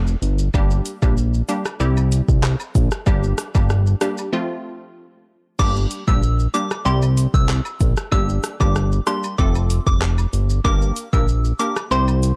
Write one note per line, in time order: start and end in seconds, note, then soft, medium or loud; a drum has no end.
0.00 0.16 F1 medium
0.00 0.44 F3 medium
0.00 0.45 A3 medium
0.00 0.45 C4 medium
0.00 0.45 F4 loud
0.07 shaker medium
0.22 0.49 G1 loud
0.22 closed hi-hat medium
0.22 shaker soft
0.39 shaker medium
0.54 0.81 G1 loud
0.54 0.98 G3 loud
0.54 0.98 A#3 medium
0.54 0.99 D4 medium
0.54 0.99 G4 loud
0.54 kick loud
0.54 high woodblock medium
0.54 shaker medium
0.71 shaker medium
0.85 closed hi-hat medium
0.85 cabasa medium
0.85 shaker medium
1.02 1.42 A#1 medium
1.02 1.16 G3 medium
1.02 1.16 A#3 medium
1.02 1.16 D4 medium
1.02 1.16 G4 medium
1.02 kick loud
1.02 high woodblock medium
1.02 shaker medium
1.17 shaker medium
1.34 shaker soft
1.48 1.64 G3 medium
1.48 1.64 A#3 medium
1.48 1.64 D4 medium
1.48 1.64 G4 medium
1.48 closed hi-hat medium
1.48 cabasa medium
1.48 shaker medium
1.65 cross-stick medium
1.65 high woodblock medium
1.65 shaker medium
1.80 2.22 C2 loud
1.80 2.97 G3 loud
1.80 2.97 C4 medium
1.80 2.97 E4 medium
1.80 2.97 G4 loud
1.80 shaker medium
1.97 high woodblock medium
1.97 shaker medium
2.12 closed hi-hat medium
2.12 cabasa medium
2.12 shaker medium
2.28 2.56 C2 medium
2.28 kick loud
2.28 shaker medium
2.43 cross-stick loud
2.43 clap loud
2.43 shaker medium
2.60 high woodblock medium
2.60 shaker medium
2.75 2.90 A#1 loud
2.75 kick medium
2.75 closed hi-hat medium
2.75 cabasa medium
2.75 shaker soft
2.91 cross-stick medium
2.91 shaker medium
3.06 3.34 G1 loud
3.06 3.51 G3 medium
3.06 3.51 A#3 medium
3.06 3.51 D4 medium
3.06 3.51 G4 loud
3.06 kick loud
3.06 high woodblock medium
3.06 shaker medium
3.24 shaker medium
3.38 cross-stick loud
3.38 closed hi-hat medium
3.38 cabasa medium
3.38 shaker medium
3.55 3.95 G1 medium
3.55 3.98 G3 medium
3.55 3.98 A#3 medium
3.55 3.98 D4 medium
3.55 3.98 G4 medium
3.55 kick loud
3.55 high woodblock medium
3.55 shaker medium
3.70 cross-stick medium
3.70 shaker medium
3.87 shaker soft
4.01 4.30 G3 medium
4.01 4.31 A#3 medium
4.01 4.31 D4 medium
4.01 4.31 G4 medium
4.01 cross-stick loud
4.01 closed hi-hat medium
4.01 cabasa medium
4.01 shaker soft
4.18 high woodblock medium
4.18 shaker medium
4.33 5.50 F3 medium
4.33 5.50 A3 medium
4.33 5.50 C4 medium
4.33 5.50 F4 loud
5.59 5.86 G1 loud
5.59 6.03 G3 loud
5.59 6.04 A#3 medium
5.59 6.04 D4 medium
5.59 6.04 G4 loud
5.59 5.71 D6 loud
5.59 kick loud
5.59 crash loud
5.59 high woodblock medium
5.59 shaker medium
5.76 shaker medium
5.91 closed hi-hat medium
5.91 cabasa medium
5.91 shaker medium
6.07 6.48 A#1 medium
6.07 6.21 G3 medium
6.07 6.21 A#3 medium
6.07 6.21 D4 medium
6.07 6.21 G4 medium
6.07 6.30 E6 medium
6.07 kick loud
6.07 high woodblock medium
6.07 shaker medium
6.23 shaker medium
6.39 shaker soft
6.54 6.69 G3 medium
6.54 6.69 A#3 medium
6.54 6.70 D4 medium
6.54 6.70 G4 medium
6.54 6.77 D6 medium
6.54 closed hi-hat medium
6.54 cabasa medium
6.54 shaker soft
6.71 cross-stick medium
6.71 high woodblock medium
6.71 shaker medium
6.85 7.27 C2 loud
6.85 8.02 G3 loud
6.85 8.02 C4 medium
6.85 8.02 E4 medium
6.85 8.02 G4 loud
6.85 6.98 C6 medium
6.85 shaker medium
7.02 high woodblock medium
7.02 shaker medium
7.17 closed hi-hat medium
7.17 cabasa medium
7.17 shaker medium
7.34 7.61 C2 medium
7.34 7.45 E6 medium
7.34 kick loud
7.34 shaker medium
7.49 cross-stick loud
7.49 clap loud
7.49 shaker medium
7.65 high woodblock medium
7.65 shaker medium
7.80 7.95 A#1 loud
7.80 kick medium
7.80 closed hi-hat medium
7.80 cabasa medium
7.80 shaker soft
7.97 cross-stick medium
7.97 shaker medium
8.11 8.39 G1 loud
8.11 8.56 G3 loud
8.11 8.56 A#3 medium
8.11 8.56 D4 medium
8.11 8.56 G4 loud
8.11 8.24 E6 loud
8.11 kick loud
8.11 high woodblock medium
8.11 shaker medium
8.29 shaker medium
8.43 cross-stick loud
8.43 closed hi-hat medium
8.43 cabasa medium
8.43 shaker medium
8.60 9.00 G1 medium
8.60 9.03 G3 medium
8.60 9.03 A#3 medium
8.60 9.03 D4 medium
8.60 9.03 G4 medium
8.60 8.83 D6 medium
8.60 kick loud
8.60 high woodblock medium
8.60 shaker medium
8.76 cross-stick loud
8.76 shaker medium
8.92 shaker medium
9.07 9.36 G3 medium
9.07 9.36 A#3 medium
9.07 9.36 D4 medium
9.07 9.36 G4 medium
9.07 9.30 C6 medium
9.07 cross-stick loud
9.07 closed hi-hat medium
9.07 cabasa medium
9.07 shaker medium
9.24 high woodblock medium
9.24 shaker medium
9.38 9.80 F1 loud
9.38 10.55 A3 loud
9.38 10.55 C4 medium
9.38 10.55 F4 medium
9.38 10.55 A4 loud
9.38 9.50 D6 medium
9.38 kick loud
9.38 shaker medium
9.55 high woodblock medium
9.55 shaker medium
9.70 closed hi-hat medium
9.70 cabasa medium
9.70 shaker medium
9.87 10.26 F1 medium
9.87 9.97 D6 medium
9.87 kick loud
9.87 shaker medium
10.02 cross-stick loud
10.02 clap loud
10.02 shaker medium
10.18 high woodblock medium
10.18 shaker medium
10.33 10.60 G1 medium
10.33 closed hi-hat medium
10.33 cabasa medium
10.33 shaker soft
10.50 shaker medium
10.64 10.92 G1 loud
10.64 11.09 A#3 loud
10.64 11.09 D4 medium
10.64 11.09 G4 medium
10.64 11.09 A#4 loud
10.64 10.77 D6 loud
10.64 kick loud
10.64 high woodblock medium
10.64 shaker medium
10.82 shaker medium
10.96 closed hi-hat medium
10.96 cabasa medium
10.96 shaker medium
11.13 11.53 A#1 medium
11.13 11.26 A#3 medium
11.13 11.27 D4 medium
11.13 11.27 G4 medium
11.13 11.27 A#4 medium
11.13 11.36 E6 medium
11.13 kick loud
11.13 high woodblock medium
11.13 shaker medium
11.28 shaker medium
11.45 shaker soft
11.59 11.75 A#3 medium
11.59 11.75 D4 medium
11.59 11.75 G4 medium
11.59 11.75 A#4 medium
11.59 11.82 D6 medium
11.59 closed hi-hat medium
11.59 cabasa medium
11.59 shaker soft
11.76 cross-stick medium
11.76 high woodblock medium
11.76 shaker medium
11.91 12.32 C2 loud
11.91 12.36 C4 loud
11.91 12.36 E4 medium
11.91 12.36 G4 medium
11.91 12.36 C5 loud
11.91 12.03 C6 medium
11.91 shaker medium
12.08 high woodblock medium
12.08 shaker medium
12.22 closed hi-hat loud
12.22 cabasa medium
12.22 shaker medium